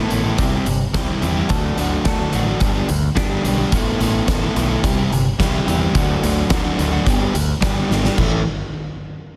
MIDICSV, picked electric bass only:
0, 0, Header, 1, 2, 480
1, 0, Start_track
1, 0, Tempo, 556586
1, 1295, Time_signature, 4, 2, 24, 8
1, 8076, End_track
2, 0, Start_track
2, 0, Title_t, "Picked electric bass"
2, 0, Program_c, 0, 34
2, 99, Note_on_c, 0, 33, 83
2, 261, Note_off_c, 0, 33, 0
2, 331, Note_on_c, 0, 36, 85
2, 495, Note_off_c, 0, 36, 0
2, 577, Note_on_c, 0, 31, 87
2, 739, Note_off_c, 0, 31, 0
2, 815, Note_on_c, 0, 36, 101
2, 977, Note_off_c, 0, 36, 0
2, 1057, Note_on_c, 0, 40, 82
2, 1219, Note_off_c, 0, 40, 0
2, 1296, Note_on_c, 0, 38, 94
2, 1458, Note_off_c, 0, 38, 0
2, 1533, Note_on_c, 0, 38, 84
2, 1697, Note_off_c, 0, 38, 0
2, 1774, Note_on_c, 0, 38, 92
2, 1937, Note_off_c, 0, 38, 0
2, 2017, Note_on_c, 0, 33, 80
2, 2179, Note_off_c, 0, 33, 0
2, 2254, Note_on_c, 0, 31, 100
2, 2417, Note_off_c, 0, 31, 0
2, 2499, Note_on_c, 0, 38, 87
2, 2661, Note_off_c, 0, 38, 0
2, 2735, Note_on_c, 0, 31, 90
2, 2898, Note_off_c, 0, 31, 0
2, 2973, Note_on_c, 0, 35, 85
2, 3136, Note_off_c, 0, 35, 0
2, 3213, Note_on_c, 0, 33, 93
2, 3377, Note_off_c, 0, 33, 0
2, 3455, Note_on_c, 0, 33, 91
2, 3617, Note_off_c, 0, 33, 0
2, 3693, Note_on_c, 0, 33, 94
2, 3856, Note_off_c, 0, 33, 0
2, 3935, Note_on_c, 0, 35, 84
2, 4098, Note_off_c, 0, 35, 0
2, 4173, Note_on_c, 0, 36, 97
2, 4336, Note_off_c, 0, 36, 0
2, 4420, Note_on_c, 0, 31, 92
2, 4581, Note_off_c, 0, 31, 0
2, 4655, Note_on_c, 0, 36, 93
2, 4818, Note_off_c, 0, 36, 0
2, 4895, Note_on_c, 0, 40, 85
2, 5058, Note_off_c, 0, 40, 0
2, 5133, Note_on_c, 0, 38, 91
2, 5296, Note_off_c, 0, 38, 0
2, 5377, Note_on_c, 0, 38, 90
2, 5539, Note_off_c, 0, 38, 0
2, 5611, Note_on_c, 0, 38, 102
2, 5775, Note_off_c, 0, 38, 0
2, 5853, Note_on_c, 0, 38, 86
2, 6016, Note_off_c, 0, 38, 0
2, 6095, Note_on_c, 0, 31, 99
2, 6257, Note_off_c, 0, 31, 0
2, 6334, Note_on_c, 0, 38, 94
2, 6497, Note_off_c, 0, 38, 0
2, 6574, Note_on_c, 0, 31, 100
2, 6737, Note_off_c, 0, 31, 0
2, 6807, Note_on_c, 0, 32, 83
2, 6973, Note_off_c, 0, 32, 0
2, 7055, Note_on_c, 0, 33, 87
2, 7278, Note_off_c, 0, 33, 0
2, 8076, End_track
0, 0, End_of_file